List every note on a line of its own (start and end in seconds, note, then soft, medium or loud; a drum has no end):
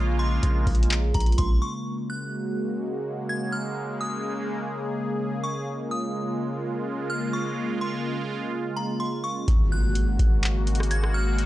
0.00 0.39 A#1 loud
0.00 1.82 C#3 medium
0.00 1.82 G#3 medium
0.00 1.82 A#3 medium
0.00 1.82 F4 medium
0.19 1.11 C6 medium
0.43 0.66 A#1 loud
0.43 closed hi-hat medium
0.67 1.13 A#1 loud
0.67 kick medium
0.67 closed hi-hat soft
0.67 open hi-hat soft
0.75 closed hi-hat medium
0.83 closed hi-hat medium
0.90 clap loud
0.90 closed hi-hat medium
1.14 1.38 A#1 loud
1.14 1.37 A#5 medium
1.14 kick medium
1.14 closed hi-hat medium
1.20 closed hi-hat medium
1.26 closed hi-hat medium
1.32 closed hi-hat soft
1.38 1.61 A#1 loud
1.38 1.61 C6 medium
1.38 kick medium
1.38 closed hi-hat medium
1.62 1.85 C#6 medium
1.86 9.44 C#3 medium
1.86 5.63 G#3 medium
1.86 9.44 A#3 medium
1.86 3.75 F#4 medium
2.10 3.25 F#6 medium
3.29 3.52 G#6 medium
3.52 3.75 F6 medium
3.77 5.65 G#4 medium
4.01 5.39 D#6 medium
5.44 5.66 C#6 medium
5.67 9.44 G#3 medium
5.67 9.44 F4 medium
5.91 7.06 D#6 medium
7.10 7.32 F6 medium
7.33 7.56 C#6 medium
7.81 8.73 C6 medium
8.77 8.99 A#5 medium
9.00 9.23 C6 medium
9.24 9.47 C#6 medium
9.48 10.17 G#1 loud
9.48 11.46 C#3 medium
9.48 11.46 G#3 medium
9.48 11.46 A#3 medium
9.48 11.46 F#4 medium
9.48 kick loud
9.48 closed hi-hat medium
9.48 impact medium
9.72 10.87 F#6 medium
9.95 closed hi-hat medium
10.19 11.46 G#1 loud
10.19 kick medium
10.19 closed hi-hat medium
10.43 clap loud
10.43 closed hi-hat medium
10.67 closed hi-hat medium
10.75 closed hi-hat medium
10.80 cross-stick loud
10.80 closed hi-hat medium
10.91 11.14 G#6 medium
10.91 closed hi-hat medium
11.04 cross-stick loud
11.14 11.37 F6 medium
11.38 closed hi-hat medium